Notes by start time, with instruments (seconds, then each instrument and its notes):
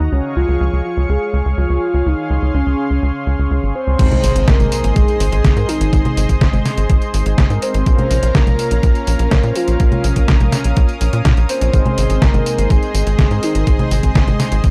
Already playing: soft synth lead D#4, analog synth pad F#5
0.00 analog synth bass D#2
0.12 analog synth bass C#2, soft synth lead C#4, analog synth pad G#4 C#5 F5 C#6
0.36 analog synth bass C#2, soft synth lead F4
0.48 analog synth bass C#2
0.61 analog synth bass C#2
0.73 analog synth bass C#2
0.85 soft synth lead F4
0.97 analog synth bass C#2
1.09 analog synth bass C#2, soft synth lead G#4
1.33 analog synth bass C#2
1.46 analog synth bass C#2
1.58 analog synth bass C#2, soft synth lead F4
1.70 analog synth bass C#2
1.94 analog synth bass C#2
2.06 analog synth bass C#2, soft synth lead D#4, analog synth pad C6
2.30 analog synth bass C#2
2.42 analog synth bass C#2
2.54 analog synth bass C#2, soft synth lead C#4
2.66 analog synth bass C#2
2.90 analog synth bass C#2
3.03 analog synth bass C#2
3.27 analog synth bass C#2
3.39 analog synth bass C#2
3.51 analog synth bass C#2
3.63 analog synth bass G#1
3.75 soft synth lead C5
3.87 analog synth bass C#2
3.99 analog synth bass G#1, analog polysynth G#3 C4 D#4 G#4, analog synth pad G#4 C5 D#5 C6, kick, closed hi-hat, crash, tambourine, impact
4.12 closed hi-hat, high conga
4.23 analog synth bass G#1, open hi-hat, tambourine
4.35 analog synth bass G#1, closed hi-hat, tambourine
4.47 analog synth bass G#1, soft synth lead A#4, kick, snare, closed hi-hat, tambourine
4.60 analog synth bass G#1, closed hi-hat, tambourine, high conga
4.72 open hi-hat, tambourine
4.84 analog synth bass G#1, closed hi-hat, tambourine
4.95 analog synth bass G#1, soft synth lead G#4, kick, closed hi-hat, tambourine
5.08 closed hi-hat, tambourine
5.20 analog synth bass G#1, analog polysynth G#3 C4 D#4 G#4, open hi-hat, tambourine
5.32 analog synth bass G#1, closed hi-hat, tambourine
5.45 analog synth bass G#1, kick, snare, closed hi-hat, tambourine
5.56 analog synth bass G#2, analog polysynth G#3 C4 D#4 A#4, closed hi-hat, tambourine
5.68 soft synth lead D#4, open hi-hat, tambourine
5.81 analog synth bass G#1, closed hi-hat, tambourine
5.93 analog synth bass G#1, analog polysynth G#3 C4 D#4 G#4, kick, closed hi-hat, tambourine
6.05 closed hi-hat, high conga
6.17 analog synth bass G#1, open hi-hat, tambourine
6.29 analog synth bass G#1, kick, closed hi-hat, tambourine
6.41 analog synth bass G#1, kick, snare, closed hi-hat, tambourine
6.53 analog synth bass G#1, closed hi-hat, tambourine, high conga
6.66 snare, open hi-hat, tambourine
6.77 analog synth bass G#1, closed hi-hat, tambourine
6.90 analog synth bass G#1, kick, closed hi-hat, tambourine
7.02 closed hi-hat, tambourine
7.14 analog synth bass G#1, analog polysynth G#3 C4 D#4 G#4, open hi-hat, tambourine
7.26 analog synth bass G#1, closed hi-hat, tambourine
7.38 analog synth bass G#1, kick, snare, closed hi-hat, tambourine
7.50 analog synth bass G#2, analog polysynth G#3 C4 D#4 A#4, closed hi-hat, tambourine
7.62 soft synth lead C5, open hi-hat, tambourine
7.74 analog synth bass G#1, closed hi-hat, tambourine
7.86 analog synth bass A#1, analog polysynth A#3 C#4 F4 A#4, analog synth pad C#4 A#4 F5 A#5, kick, closed hi-hat, tambourine
7.99 closed hi-hat, high conga
8.11 analog synth bass A#1, open hi-hat, tambourine
8.23 analog synth bass A#1, closed hi-hat, tambourine
8.35 analog synth bass A#1, soft synth lead A#4, kick, snare, closed hi-hat, tambourine
8.47 analog synth bass A#1, closed hi-hat, tambourine, high conga
8.59 open hi-hat, tambourine
8.71 analog synth bass A#1, closed hi-hat, tambourine
8.83 analog synth bass A#1, soft synth lead A#4, kick, closed hi-hat, tambourine
8.95 closed hi-hat, tambourine
9.07 analog synth bass A#1, analog polysynth A#3 C#4 F4 A#4, open hi-hat, tambourine
9.19 analog synth bass A#1, closed hi-hat, tambourine
9.31 analog synth bass A#1, kick, snare, closed hi-hat, tambourine
9.43 analog synth bass A#2, analog polysynth A#3 C#4 F4 C5, closed hi-hat, tambourine
9.55 soft synth lead F4, open hi-hat, tambourine
9.68 analog synth bass A#1, closed hi-hat, tambourine
9.80 analog synth bass A#1, analog polysynth A#3 C#4 F4 A#4, analog synth pad D#6, kick, closed hi-hat, tambourine
9.92 closed hi-hat, high conga
10.04 analog synth bass A#1, open hi-hat, tambourine
10.16 analog synth bass A#1, kick, closed hi-hat, tambourine
10.28 analog synth bass A#1, kick, snare, closed hi-hat, tambourine
10.40 analog synth bass A#1, closed hi-hat, tambourine, high conga
10.52 snare, open hi-hat, tambourine
10.64 analog synth bass A#1, closed hi-hat, tambourine
10.77 analog synth bass A#1, kick, closed hi-hat, tambourine
10.89 closed hi-hat, tambourine
11.01 analog synth bass A#1, open hi-hat, tambourine
11.13 analog synth bass A#2, closed hi-hat, tambourine
11.25 analog synth bass A#2, kick, snare, closed hi-hat, tambourine
11.37 analog synth bass A#1, closed hi-hat, tambourine
11.49 analog polysynth A#3 C#4 F4 A#4, soft synth lead C5, open hi-hat, tambourine
11.61 analog synth bass A#1, closed hi-hat, tambourine
11.73 analog synth bass G#1, analog polysynth G#3 C4 D#4 G#4, analog synth pad G#4 C5 D#5 C6, kick, closed hi-hat, tambourine
11.86 closed hi-hat, high conga
11.98 analog synth bass G#1, open hi-hat, tambourine
12.10 analog synth bass G#1, closed hi-hat, tambourine
12.22 analog synth bass G#1, soft synth lead A#4, kick, snare, closed hi-hat, tambourine
12.34 analog synth bass G#1, closed hi-hat, tambourine, high conga
12.46 open hi-hat, tambourine
12.58 analog synth bass G#1, closed hi-hat, tambourine
12.70 analog synth bass G#1, soft synth lead G#4, kick, closed hi-hat, tambourine
12.83 closed hi-hat, tambourine
12.94 analog synth bass G#1, analog polysynth G#3 C4 D#4 G#4, open hi-hat, tambourine
13.06 analog synth bass G#1, closed hi-hat, tambourine
13.19 analog synth bass G#1, kick, snare, closed hi-hat, tambourine
13.31 analog synth bass G#2, analog polysynth G#3 C4 D#4 A#4, closed hi-hat, tambourine
13.43 soft synth lead D#4, open hi-hat, tambourine
13.55 analog synth bass G#1, closed hi-hat, tambourine
13.67 analog synth bass G#1, analog polysynth G#3 C4 D#4 G#4, kick, closed hi-hat, tambourine
13.79 closed hi-hat, high conga
13.91 analog synth bass G#1, open hi-hat, tambourine
14.03 analog synth bass G#1, kick, closed hi-hat, tambourine
14.15 analog synth bass G#1, kick, snare, closed hi-hat, tambourine
14.27 analog synth bass G#1, closed hi-hat, tambourine, high conga
14.40 snare, open hi-hat, tambourine
14.52 analog synth bass G#1, closed hi-hat, tambourine
14.64 analog synth bass G#1, kick, closed hi-hat, tambourine